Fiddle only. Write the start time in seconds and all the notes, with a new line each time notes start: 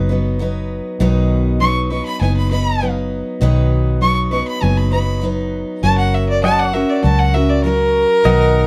1.60 C#6
1.91 C#6
2.05 B5
2.21 G#5
2.36 B5
2.51 B5
4.02 C#6
4.33 C#6
4.48 B5
4.62 G#5
4.77 B5
4.92 B5
5.83 A5
5.98 F#5
6.14 E5
6.29 D5
6.44 A5
6.59 F#5
6.74 E5
6.90 D5
7.04 A5
7.19 F#5
7.34 E5
7.50 D5
7.64 A#4